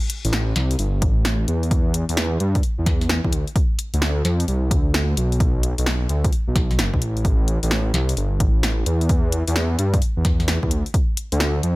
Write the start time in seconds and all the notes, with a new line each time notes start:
0.10 closed hi-hat
0.25 A1, closed hi-hat
0.33 snare, closed hi-hat
0.56 C2, snare, closed hi-hat
0.71 closed hi-hat
0.79 G1, closed hi-hat
1.02 A1, kick, closed hi-hat
1.25 snare, closed hi-hat
1.48 E2, closed hi-hat
1.63 closed hi-hat
1.71 kick, closed hi-hat
1.94 closed hi-hat
2.09 E2, closed hi-hat
2.17 snare, closed hi-hat
2.40 G2, closed hi-hat
2.55 kick, closed hi-hat
2.63 closed hi-hat
2.78 E2
2.86 kick, snare, closed hi-hat
3.01 snare, closed hi-hat
3.09 snare, closed hi-hat
3.24 E2, kick
3.33 D2, closed hi-hat
3.48 closed hi-hat
3.56 kick, closed hi-hat
3.79 closed hi-hat
3.94 D2, closed hi-hat
4.02 snare, closed hi-hat
4.25 F2, snare, closed hi-hat
4.40 closed hi-hat
4.48 C2, closed hi-hat
4.71 D2, kick, closed hi-hat
4.94 snare, closed hi-hat
5.17 B1, closed hi-hat
5.32 closed hi-hat
5.40 kick, closed hi-hat
5.63 closed hi-hat
5.78 B1, closed hi-hat
5.86 snare, closed hi-hat
6.09 D2, closed hi-hat
6.24 kick, closed hi-hat
6.33 closed hi-hat
6.48 B1
6.56 kick, snare, closed hi-hat
6.71 snare, closed hi-hat
6.79 F#1, snare, closed hi-hat
6.94 B1, kick
7.02 A1, closed hi-hat
7.17 closed hi-hat
7.25 kick, closed hi-hat
7.48 closed hi-hat
7.63 A1, closed hi-hat
7.71 snare, closed hi-hat
7.94 C2, snare, closed hi-hat
8.09 closed hi-hat
8.17 G1, closed hi-hat
8.40 A1, kick, closed hi-hat
8.63 snare, closed hi-hat
8.86 E2, closed hi-hat
9.01 closed hi-hat
9.09 kick, closed hi-hat
9.32 closed hi-hat
9.48 E2, closed hi-hat
9.56 snare, closed hi-hat
9.79 G2, closed hi-hat
9.94 kick, closed hi-hat
10.02 closed hi-hat
10.17 E2
10.25 kick, snare, closed hi-hat
10.40 snare, closed hi-hat
10.48 snare, closed hi-hat
10.63 E2, kick
10.71 D2, closed hi-hat
10.86 closed hi-hat
10.94 kick, closed hi-hat
11.17 closed hi-hat
11.32 D2, closed hi-hat
11.40 snare, closed hi-hat
11.63 F2, closed hi-hat